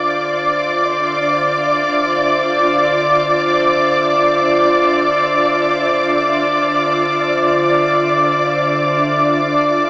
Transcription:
0, 0, Header, 1, 4, 480
1, 0, Start_track
1, 0, Key_signature, -1, "minor"
1, 0, Tempo, 500000
1, 9503, End_track
2, 0, Start_track
2, 0, Title_t, "Violin section"
2, 0, Program_c, 0, 48
2, 0, Note_on_c, 0, 74, 61
2, 0, Note_on_c, 0, 86, 61
2, 9503, Note_off_c, 0, 74, 0
2, 9503, Note_off_c, 0, 86, 0
2, 9503, End_track
3, 0, Start_track
3, 0, Title_t, "Ambient pad"
3, 0, Program_c, 1, 92
3, 0, Note_on_c, 1, 50, 66
3, 0, Note_on_c, 1, 62, 64
3, 0, Note_on_c, 1, 65, 63
3, 0, Note_on_c, 1, 72, 70
3, 0, Note_on_c, 1, 76, 55
3, 9503, Note_off_c, 1, 50, 0
3, 9503, Note_off_c, 1, 62, 0
3, 9503, Note_off_c, 1, 65, 0
3, 9503, Note_off_c, 1, 72, 0
3, 9503, Note_off_c, 1, 76, 0
3, 9503, End_track
4, 0, Start_track
4, 0, Title_t, "Synth drone"
4, 0, Program_c, 2, 95
4, 0, Note_on_c, 2, 50, 63
4, 9503, Note_off_c, 2, 50, 0
4, 9503, End_track
0, 0, End_of_file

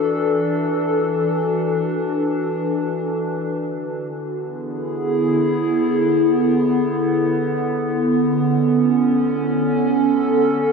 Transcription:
0, 0, Header, 1, 2, 480
1, 0, Start_track
1, 0, Tempo, 500000
1, 10295, End_track
2, 0, Start_track
2, 0, Title_t, "Ambient pad"
2, 0, Program_c, 0, 92
2, 0, Note_on_c, 0, 52, 80
2, 0, Note_on_c, 0, 62, 73
2, 0, Note_on_c, 0, 66, 69
2, 0, Note_on_c, 0, 69, 69
2, 3331, Note_off_c, 0, 62, 0
2, 3332, Note_off_c, 0, 69, 0
2, 3333, Note_off_c, 0, 52, 0
2, 3333, Note_on_c, 0, 50, 92
2, 4023, Note_on_c, 0, 59, 85
2, 4065, Note_on_c, 0, 64, 77
2, 4149, Note_on_c, 0, 68, 91
2, 4839, Note_off_c, 0, 66, 0
2, 7100, Note_off_c, 0, 68, 0
2, 7585, Note_on_c, 0, 61, 79
2, 8621, Note_off_c, 0, 64, 0
2, 8823, Note_on_c, 0, 69, 84
2, 10295, Note_off_c, 0, 50, 0
2, 10295, Note_off_c, 0, 59, 0
2, 10295, Note_off_c, 0, 61, 0
2, 10295, Note_off_c, 0, 69, 0
2, 10295, End_track
0, 0, End_of_file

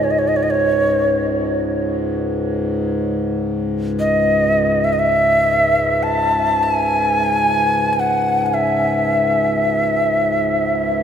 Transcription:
0, 0, Header, 1, 3, 480
1, 0, Start_track
1, 0, Key_signature, 4, "minor"
1, 0, Tempo, 500000
1, 10590, End_track
2, 0, Start_track
2, 0, Title_t, "Native American-style wooden flute"
2, 0, Program_c, 0, 77
2, 36, Note_on_c, 0, 73, 51
2, 103, Note_on_c, 0, 75, 47
2, 117, Note_off_c, 0, 73, 0
2, 179, Note_on_c, 0, 73, 48
2, 194, Note_off_c, 0, 75, 0
2, 268, Note_on_c, 0, 75, 51
2, 282, Note_off_c, 0, 73, 0
2, 349, Note_on_c, 0, 73, 49
2, 363, Note_off_c, 0, 75, 0
2, 411, Note_on_c, 0, 75, 47
2, 426, Note_off_c, 0, 73, 0
2, 483, Note_on_c, 0, 73, 64
2, 498, Note_off_c, 0, 75, 0
2, 1224, Note_off_c, 0, 73, 0
2, 3836, Note_on_c, 0, 75, 75
2, 4649, Note_on_c, 0, 76, 69
2, 4663, Note_off_c, 0, 75, 0
2, 4731, Note_on_c, 0, 75, 56
2, 4745, Note_off_c, 0, 76, 0
2, 4792, Note_on_c, 0, 76, 76
2, 4806, Note_off_c, 0, 75, 0
2, 5788, Note_on_c, 0, 81, 85
2, 5803, Note_off_c, 0, 76, 0
2, 6365, Note_on_c, 0, 80, 96
2, 6379, Note_off_c, 0, 81, 0
2, 7611, Note_off_c, 0, 80, 0
2, 7611, Note_on_c, 0, 80, 52
2, 7676, Note_on_c, 0, 78, 77
2, 7690, Note_off_c, 0, 80, 0
2, 8122, Note_off_c, 0, 78, 0
2, 8122, Note_on_c, 0, 78, 45
2, 8197, Note_on_c, 0, 76, 76
2, 8211, Note_off_c, 0, 78, 0
2, 10590, Note_off_c, 0, 76, 0
2, 10590, End_track
3, 0, Start_track
3, 0, Title_t, "Harmonium"
3, 0, Program_c, 1, 20
3, 0, Note_on_c, 1, 37, 55
3, 0, Note_on_c, 1, 44, 52
3, 10590, Note_off_c, 1, 37, 0
3, 10590, Note_off_c, 1, 44, 0
3, 10590, End_track
0, 0, End_of_file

